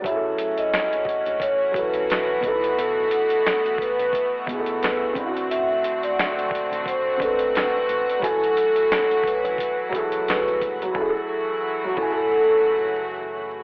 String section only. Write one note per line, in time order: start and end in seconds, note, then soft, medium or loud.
0.05 5.12 E3 medium
0.05 10.91 A3 medium
0.05 2.41 C#4 medium
0.05 5.12 F#4 medium
2.43 5.13 B3 medium
5.16 8.19 D3 medium
5.16 8.19 C4 medium
5.16 10.91 F#4 medium
8.22 10.92 E3 medium
8.22 10.92 F#3 medium
10.95 13.63 E3 medium
10.95 13.63 F#3 medium
10.95 13.63 A3 medium
10.95 13.63 F#4 medium